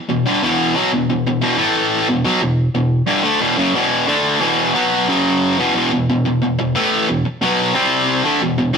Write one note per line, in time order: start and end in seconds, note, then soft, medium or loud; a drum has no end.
0.09 0.25 E2 medium
0.09 0.25 B2 medium
0.26 0.41 G2 medium
0.26 0.41 D3 loud
0.42 0.74 E2 loud
0.42 0.74 B2 loud
0.42 0.74 E3 loud
0.75 0.90 B2 medium
0.75 0.91 F#3 loud
0.93 1.09 E2 medium
0.93 1.09 B2 medium
1.10 1.25 E2 medium
1.10 1.25 B2 medium
1.27 1.40 E2 medium
1.27 1.41 B2 medium
1.42 1.57 E2 medium
1.42 1.57 B2 loud
1.58 2.07 A2 medium
1.58 2.07 E3 medium
1.58 2.07 A3 loud
2.09 2.25 E2 medium
2.09 2.23 B2 medium
2.24 2.40 B2 medium
2.24 2.40 F#3 loud
2.41 2.68 E2 medium
2.41 2.68 B2 medium
2.75 3.01 E2 medium
2.75 3.01 B2 medium
3.07 3.23 G2 medium
3.07 3.22 D3 loud
3.23 3.39 D3 medium
3.23 3.40 A3 loud
3.40 3.56 E2 loud
3.40 3.56 B2 loud
3.58 3.73 F#2 medium
3.58 3.73 C#3 loud
3.75 4.07 E2 medium
3.75 4.07 B2 loud
3.75 4.07 E3 medium
4.07 4.40 D3 loud
4.07 4.40 A3 medium
4.07 4.40 D4 loud
4.40 4.73 E2 loud
4.40 4.73 B2 loud
4.40 4.74 E3 loud
4.74 5.07 B2 loud
4.74 5.07 F#3 loud
4.74 5.07 B3 loud
5.08 5.57 F#2 loud
5.08 5.57 C#3 medium
5.08 5.57 F#3 loud
5.59 5.74 E2 medium
5.59 5.74 B2 medium
5.75 5.90 E2 loud
5.75 5.91 B2 loud
5.92 6.08 E2 medium
5.92 6.08 B2 medium
6.10 6.24 E2 medium
6.10 6.25 B2 medium
6.25 6.41 E2 medium
6.25 6.41 B2 medium
6.42 6.57 E2 medium
6.42 6.58 B2 medium
6.59 6.75 E2 medium
6.59 6.74 B2 medium
6.75 7.07 A2 medium
6.75 7.07 E3 medium
6.75 7.07 A3 loud
7.08 7.24 E2 medium
7.08 7.25 B2 medium
7.25 muted distorted electric guitar stroke medium
7.41 7.74 B2 loud
7.41 7.74 F#3 medium
7.41 7.74 B3 loud
7.74 8.23 C3 medium
7.74 8.24 G3 medium
7.74 8.24 C4 loud
8.23 8.40 D3 medium
8.23 8.40 A3 medium
8.41 8.57 E2 medium
8.41 8.57 B2 medium
8.58 8.75 E2 medium
8.58 8.73 B2 medium
8.74 8.78 A2 loud
8.74 8.78 E3 loud